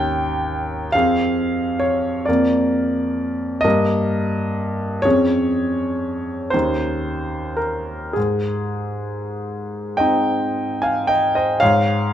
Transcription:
0.00 0.87 D#2 medium
0.00 0.90 C#4 soft
0.00 0.90 D#4 soft
0.00 0.92 G5 medium
0.92 2.25 F2 medium
0.92 2.25 C4 soft
0.92 2.25 G#4 soft
0.92 1.82 F5 medium
1.79 2.26 C#5 medium
2.25 3.61 F2 medium
2.25 3.61 A#3 soft
2.25 3.61 A#4 soft
2.25 3.63 D5 medium
3.61 5.01 G2 medium
3.61 5.01 A#3 soft
3.61 5.01 A#4 soft
3.61 5.03 D#5 medium
5.02 6.49 F2 medium
5.02 6.49 C#4 soft
5.02 6.49 G#4 soft
5.02 6.52 C#5 medium
6.50 8.12 D#2 soft
6.50 8.12 C#4 soft
6.50 8.12 D#4 soft
6.50 7.58 C5 medium
7.57 8.15 A#4 medium
8.13 11.57 G#2 soft
8.13 11.09 G#4 medium
9.97 11.57 C4 soft
9.97 11.57 D#4 soft
9.97 10.78 D#5 medium
9.97 10.82 G5 medium
10.82 11.08 F5 soft
10.82 11.09 G#5 medium
11.07 11.34 D#5 soft
11.07 11.35 G5 medium
11.35 11.59 C5 soft
11.35 11.60 D#5 medium
11.60 12.13 G#2 medium
11.60 12.13 C#5 medium
11.60 12.13 F5 medium

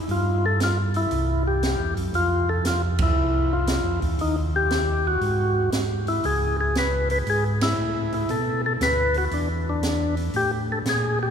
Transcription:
0.08 1.07 G2 medium
0.08 0.45 F4 medium
0.08 open hi-hat soft
0.46 0.60 A4 medium
0.60 0.78 F4 medium
0.60 snare medium
0.60 closed hi-hat soft
0.94 1.43 E4 medium
0.94 open hi-hat soft
1.11 1.76 C2 medium
1.11 open hi-hat soft
1.47 1.94 G4 medium
1.63 snare medium
1.63 closed hi-hat soft
1.80 1.96 E2 medium
1.95 2.12 F#2 medium
1.95 open hi-hat soft
2.13 3.12 F2 medium
2.13 2.50 F4 medium
2.13 open hi-hat soft
2.49 2.65 A4 medium
2.65 2.82 F4 medium
2.65 snare medium
2.65 closed hi-hat soft
2.98 3.54 E4 medium
2.98 kick medium
2.98 ride medium
3.16 3.81 C2 medium
3.53 4.00 F4 medium
3.67 snare medium
3.67 closed hi-hat soft
3.84 4.00 F2 medium
4.01 4.17 E2 medium
4.01 kick soft
4.01 open hi-hat soft
4.19 5.17 D#2 medium
4.19 4.36 D#4 medium
4.19 open hi-hat soft
4.56 5.07 G4 medium
4.70 snare medium
4.70 closed hi-hat soft
5.07 5.70 F#4 medium
5.21 5.69 G#2 medium
5.21 open hi-hat soft
5.72 6.21 G#2 medium
5.72 snare medium
5.72 closed hi-hat soft
6.07 6.25 E4 medium
6.07 open hi-hat soft
6.23 7.23 C#2 medium
6.23 6.57 G#4 medium
6.23 open hi-hat soft
6.61 6.77 G#4 medium
6.75 7.09 B4 medium
6.75 snare medium
6.75 closed hi-hat soft
7.10 7.18 B4 medium
7.10 open hi-hat soft
7.27 7.74 G#2 medium
7.27 7.44 G#4 medium
7.27 open hi-hat soft
7.61 8.13 E4 medium
7.61 snare medium
7.61 ride medium
7.78 8.26 A2 medium
8.12 8.31 E4 medium
8.12 open hi-hat soft
8.29 8.77 B2 medium
8.29 8.62 A4 medium
8.29 open hi-hat soft
8.66 8.73 A4 medium
8.81 9.28 D2 medium
8.81 9.17 B4 medium
8.81 snare medium
8.81 closed hi-hat soft
9.14 9.25 F#4 medium
9.14 open hi-hat soft
9.31 10.30 E2 medium
9.31 9.49 D4 medium
9.31 open hi-hat soft
9.69 10.15 D4 medium
9.83 snare medium
9.83 closed hi-hat soft
10.17 open hi-hat soft
10.33 10.82 A2 medium
10.33 10.51 G4 medium
10.33 open hi-hat soft
10.72 10.79 A4 medium
10.85 11.31 A#2 medium
10.85 11.19 G#4 medium
10.85 snare medium
10.85 closed hi-hat soft
11.23 11.30 G4 medium

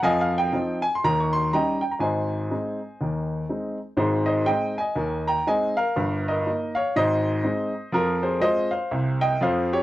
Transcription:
0.02 0.45 F2 medium
0.02 0.45 F3 medium
0.02 0.20 D#5 medium
0.02 0.20 F5 medium
0.02 0.20 G#5 medium
0.21 0.38 F5 medium
0.38 0.84 G5 medium
0.53 0.80 F3 soft
0.53 0.80 C4 soft
0.53 0.81 D#4 medium
0.82 0.93 G#5 medium
0.95 1.04 C6 medium
1.04 1.46 D#2 medium
1.04 1.46 D#3 medium
1.04 1.19 A#5 medium
1.20 1.34 C#6 medium
1.33 1.52 C6 medium
1.53 1.80 G3 soft
1.53 1.80 C#4 soft
1.53 1.81 D#4 soft
1.53 1.82 D#5 medium
1.53 1.80 G5 medium
1.53 1.83 A#5 medium
1.81 1.92 G5 medium
1.91 2.02 A#5 soft
1.99 2.42 G#1 medium
1.99 2.43 G#2 medium
1.99 3.76 C5 soft
1.99 3.76 D#5 soft
1.99 3.79 G#5 medium
2.51 2.78 G#3 soft
2.51 2.78 C4 soft
2.51 2.78 D#4 soft
3.01 3.43 D#2 soft
3.01 3.43 D#3 soft
3.49 3.77 G#3 soft
3.49 3.77 C4 soft
3.49 3.77 D#4 soft
3.97 4.40 G#1 medium
3.97 4.40 G#2 medium
3.97 4.27 G#4 medium
3.97 4.26 C5 medium
4.26 4.46 C5 medium
4.26 4.46 D#5 medium
4.46 4.73 G#3 soft
4.46 4.74 C4 soft
4.46 4.74 D#4 soft
4.46 4.76 D#5 medium
4.46 4.77 G5 medium
4.78 5.25 D#5 medium
4.78 5.27 G#5 medium
4.96 5.38 D#2 medium
4.96 5.39 D#3 medium
5.28 5.46 G5 medium
5.28 5.47 A#5 medium
5.47 5.74 G#3 soft
5.47 5.74 C4 soft
5.47 5.74 D#4 soft
5.47 5.75 D#5 medium
5.47 5.77 G#5 medium
5.77 6.23 A#4 medium
5.77 6.26 F5 medium
5.96 6.38 G1 medium
5.96 6.38 G2 medium
6.28 6.73 A#4 medium
6.28 6.76 D#5 medium
6.47 6.73 A#3 soft
6.47 6.73 D#4 soft
6.75 6.94 C#5 medium
6.75 6.94 F5 medium
6.96 7.37 G#1 medium
6.96 7.37 G#2 medium
6.96 7.90 C5 medium
6.96 7.94 D#5 medium
7.43 7.71 G#3 soft
7.43 7.71 C4 soft
7.43 7.71 D#4 soft
7.92 8.35 F2 medium
7.92 8.34 F3 medium
7.92 8.22 F4 medium
7.92 8.23 A#4 medium
8.23 8.41 G#4 soft
8.23 8.41 C5 medium
8.40 8.68 G#3 soft
8.40 8.68 C4 soft
8.40 8.68 F4 soft
8.40 8.70 C5 medium
8.40 8.72 D#5 medium
8.71 9.18 C5 medium
8.71 9.21 F5 medium
8.91 9.33 C2 medium
8.91 9.33 C3 medium
9.21 9.39 D#5 medium
9.21 9.41 G5 medium
9.41 9.80 F2 medium
9.41 9.80 F3 medium
9.41 9.70 C5 medium
9.41 9.71 F5 medium
9.73 9.83 G4 medium
9.73 9.83 C#5 medium

